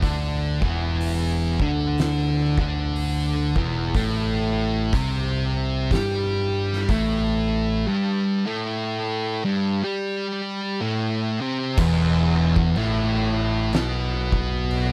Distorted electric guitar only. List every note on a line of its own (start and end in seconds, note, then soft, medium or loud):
0.02 0.60 D3 loud
0.02 0.61 D4 loud
0.62 1.58 E2 medium
0.62 1.58 E3 medium
1.61 2.57 D3 medium
1.61 2.57 D4 medium
2.59 3.55 D3 medium
2.59 3.55 D4 loud
3.57 3.94 E2 loud
3.57 3.94 E3 loud
3.96 4.92 A2 medium
3.96 4.92 A3 loud
4.94 5.90 C3 loud
4.94 5.90 C4 loud
5.92 6.88 G3 medium
5.92 6.89 G4 loud
6.89 7.86 A2 medium
6.89 7.86 A3 medium
7.87 8.45 G2 loud
7.87 8.45 G3 loud
8.46 9.42 A2 medium
8.46 9.43 A3 loud
9.45 9.82 G2 medium
9.45 9.82 G3 loud
9.84 10.80 G3 medium
9.84 10.80 G4 medium
10.81 11.38 A2 medium
10.81 11.38 A3 medium
11.41 11.78 C3 loud
11.41 11.78 C4 loud
11.79 12.75 E2 loud
11.79 12.76 E3 loud
12.77 13.73 A2 medium
12.77 13.73 A3 medium
13.74 14.92 B2 loud
13.74 14.92 B3 loud